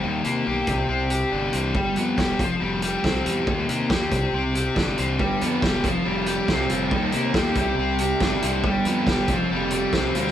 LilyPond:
<<
  \new Staff \with { instrumentName = "Overdriven electric guitar" } { \time 4/4 \key c \major \tempo 4 = 139 ees8 bes8 g'8 c8 c'8 g'8 d'8 c'8 | g8 b8 g'8 f8 g8 g'8 c'8 g8 | ees8 bes8 g'8 c8 c'8 g'8 d'8 c'8 | g8 b8 g'8 f8 g8 g'8 c'8 g8 |
ees8 bes8 g'8 c8 c'8 g'8 d'8 c'8 | g8 b8 g'8 f8 g8 g'8 c'8 g8 | }
  \new Staff \with { instrumentName = "Overdriven electric guitar" } { \clef bass \time 4/4 \key c \major r1 | r1 | r1 | <g, d g b d' g'>4. <f g c' f'>2 <f g c' f'>8 |
<ees g bes ees'>4. <c g c' e'>2 <c g c' e'>8 | <g, d g b d'>4. <f g c' f'>2 <f g c' f'>8 | }
  \new Staff \with { instrumentName = "Fingered electric bass" } { \clef bass \time 4/4 \key c \major ees,8 c8 b,,8 c,8 c,4 g,,8 c,8 | g,,8 f,8 e,,8 f,,8 f,,4 c,8 e,8 | ees,8 c8 ees,8 c,8 c,4 g,,8 c,8 | g,,8 f,8 e,,8 f,,8 f,,4 c,8 f,,8 |
ees,8 c8 ees,8 c,8 c,4 g,,8 c,8 | g,,8 f,8 e,,8 f,,8 f,,4 c,8 d,8 | }
  \new DrumStaff \with { instrumentName = "Drums" } \drummode { \time 4/4 r8 hh8 r8 <hh bd>8 r8 hh8 r8 hh8 | bd8 hh8 <bd sn>8 <hh bd>8 r8 hh8 <bd sn>8 hh8 | bd8 hh8 <bd sn>8 <hh bd>8 r8 hh8 <bd sn>8 hh8 | bd8 hh8 <bd sn>8 <hh bd>8 r8 hh8 <bd sn>8 hh8 |
bd8 hh8 <bd sn>8 <hh bd>8 r8 hh8 <bd sn>8 hh8 | bd8 hh8 <bd sn>8 <hh bd>8 r8 hh8 <bd sn>8 hh16 sn16 | }
>>